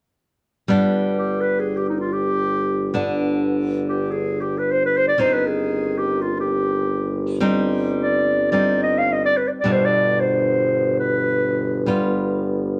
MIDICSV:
0, 0, Header, 1, 4, 480
1, 0, Start_track
1, 0, Tempo, 500000
1, 12287, End_track
2, 0, Start_track
2, 0, Title_t, "Clarinet"
2, 0, Program_c, 0, 71
2, 1136, Note_on_c, 0, 67, 60
2, 1353, Note_on_c, 0, 71, 65
2, 1368, Note_off_c, 0, 67, 0
2, 1531, Note_on_c, 0, 68, 63
2, 1546, Note_off_c, 0, 71, 0
2, 1698, Note_on_c, 0, 67, 61
2, 1712, Note_off_c, 0, 68, 0
2, 1805, Note_off_c, 0, 67, 0
2, 1811, Note_on_c, 0, 63, 61
2, 1910, Note_off_c, 0, 63, 0
2, 1920, Note_on_c, 0, 65, 61
2, 2043, Note_on_c, 0, 67, 72
2, 2058, Note_off_c, 0, 65, 0
2, 2947, Note_off_c, 0, 67, 0
2, 3731, Note_on_c, 0, 67, 64
2, 3949, Note_on_c, 0, 68, 67
2, 3963, Note_off_c, 0, 67, 0
2, 4235, Note_on_c, 0, 67, 65
2, 4249, Note_off_c, 0, 68, 0
2, 4399, Note_on_c, 0, 71, 64
2, 4413, Note_off_c, 0, 67, 0
2, 4529, Note_on_c, 0, 72, 70
2, 4544, Note_off_c, 0, 71, 0
2, 4651, Note_off_c, 0, 72, 0
2, 4660, Note_on_c, 0, 71, 76
2, 4771, Note_on_c, 0, 72, 75
2, 4786, Note_off_c, 0, 71, 0
2, 4870, Note_off_c, 0, 72, 0
2, 4875, Note_on_c, 0, 74, 66
2, 4991, Note_on_c, 0, 72, 72
2, 5006, Note_off_c, 0, 74, 0
2, 5119, Note_on_c, 0, 71, 67
2, 5133, Note_off_c, 0, 72, 0
2, 5249, Note_on_c, 0, 68, 67
2, 5263, Note_off_c, 0, 71, 0
2, 5742, Note_on_c, 0, 67, 70
2, 5756, Note_off_c, 0, 68, 0
2, 5965, Note_on_c, 0, 65, 62
2, 5979, Note_off_c, 0, 67, 0
2, 6135, Note_off_c, 0, 65, 0
2, 6141, Note_on_c, 0, 67, 64
2, 7154, Note_off_c, 0, 67, 0
2, 7699, Note_on_c, 0, 74, 59
2, 8153, Note_off_c, 0, 74, 0
2, 8174, Note_on_c, 0, 74, 66
2, 8467, Note_off_c, 0, 74, 0
2, 8474, Note_on_c, 0, 75, 71
2, 8621, Note_on_c, 0, 77, 74
2, 8635, Note_off_c, 0, 75, 0
2, 8760, Note_on_c, 0, 75, 74
2, 8774, Note_off_c, 0, 77, 0
2, 8876, Note_off_c, 0, 75, 0
2, 8882, Note_on_c, 0, 74, 77
2, 8997, Note_on_c, 0, 71, 68
2, 9011, Note_off_c, 0, 74, 0
2, 9098, Note_on_c, 0, 74, 43
2, 9113, Note_off_c, 0, 71, 0
2, 9121, Note_off_c, 0, 74, 0
2, 9214, Note_on_c, 0, 74, 66
2, 9332, Note_on_c, 0, 72, 65
2, 9346, Note_off_c, 0, 74, 0
2, 9458, Note_on_c, 0, 74, 60
2, 9472, Note_off_c, 0, 72, 0
2, 9795, Note_on_c, 0, 72, 70
2, 9810, Note_off_c, 0, 74, 0
2, 10548, Note_off_c, 0, 72, 0
2, 10554, Note_on_c, 0, 71, 65
2, 11431, Note_off_c, 0, 71, 0
2, 12287, End_track
3, 0, Start_track
3, 0, Title_t, "Nylon-string guitar"
3, 0, Program_c, 1, 24
3, 654, Note_on_c, 1, 55, 55
3, 661, Note_on_c, 1, 59, 52
3, 672, Note_on_c, 1, 62, 61
3, 2775, Note_off_c, 1, 55, 0
3, 2778, Note_off_c, 1, 59, 0
3, 2784, Note_off_c, 1, 62, 0
3, 2820, Note_on_c, 1, 50, 43
3, 2824, Note_on_c, 1, 59, 41
3, 2828, Note_on_c, 1, 62, 52
3, 4931, Note_off_c, 1, 50, 0
3, 4933, Note_off_c, 1, 59, 0
3, 4935, Note_off_c, 1, 62, 0
3, 4971, Note_on_c, 1, 51, 42
3, 4978, Note_on_c, 1, 60, 40
3, 4986, Note_on_c, 1, 63, 53
3, 7079, Note_off_c, 1, 51, 0
3, 7082, Note_off_c, 1, 60, 0
3, 7087, Note_off_c, 1, 63, 0
3, 7108, Note_on_c, 1, 55, 51
3, 7111, Note_on_c, 1, 60, 55
3, 7115, Note_on_c, 1, 63, 54
3, 8168, Note_off_c, 1, 55, 0
3, 8175, Note_off_c, 1, 60, 0
3, 8177, Note_off_c, 1, 63, 0
3, 8179, Note_on_c, 1, 55, 36
3, 8186, Note_on_c, 1, 60, 38
3, 8191, Note_on_c, 1, 63, 40
3, 9241, Note_off_c, 1, 55, 0
3, 9248, Note_off_c, 1, 60, 0
3, 9252, Note_on_c, 1, 55, 52
3, 9258, Note_on_c, 1, 47, 41
3, 9262, Note_off_c, 1, 63, 0
3, 9267, Note_on_c, 1, 62, 52
3, 11362, Note_off_c, 1, 55, 0
3, 11365, Note_off_c, 1, 47, 0
3, 11369, Note_off_c, 1, 62, 0
3, 11389, Note_on_c, 1, 55, 46
3, 11398, Note_on_c, 1, 59, 44
3, 11404, Note_on_c, 1, 65, 50
3, 12287, Note_off_c, 1, 55, 0
3, 12287, Note_off_c, 1, 59, 0
3, 12287, Note_off_c, 1, 65, 0
3, 12287, End_track
4, 0, Start_track
4, 0, Title_t, "Tuba"
4, 0, Program_c, 2, 58
4, 664, Note_on_c, 2, 31, 61
4, 4929, Note_off_c, 2, 31, 0
4, 4966, Note_on_c, 2, 31, 71
4, 9089, Note_off_c, 2, 31, 0
4, 9252, Note_on_c, 2, 31, 73
4, 12287, Note_off_c, 2, 31, 0
4, 12287, End_track
0, 0, End_of_file